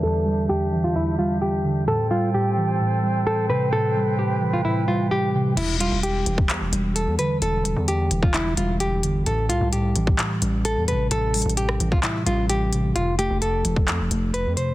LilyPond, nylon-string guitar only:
\new Staff \with { instrumentName = "Nylon-string guitar" } { \time 4/4 \key e \phrygian \tempo 4 = 130 a'4 g'8. f'16 e'8 f'8 g'4 | a'8 f'8 g'2 a'8 b'8 | a'4 g'8. f'16 e'8 f'8 g'4 | e'8 f'8 g'2 a'8 b'8 |
a'4 g'8. f'16 e'8 f'8 g'4 | a'8 f'8 g'2 a'8 b'8 | a'4 g'8. f'16 e'8 f'8 g'4 | f'8 g'8 a'2 b'8 c''8 | }